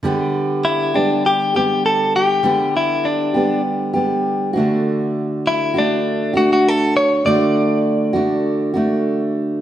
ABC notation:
X:1
M:4/4
L:1/16
Q:"Swing 16ths" 1/4=100
K:Glyd
V:1 name="Clean electric guitar"
z4 E2 D2 G2 G2 A2 G2- | G2 E2 D4 z8 | z4 E2 D4 F F A2 c2 | d12- d2 z2 |]
V:2 name="Steel-string acoustic guitar"
[D,G,B,G]6 [G,B,G]4 [G,B,G]6 | [D,G,B,G]6 [G,B,G]4 [G,B,G]4 [D,A,DF]2- | [D,A,DF]6 [A,DF]4 [A,DF]6 | [D,A,DF]6 [A,DF]4 [A,DF]6 |]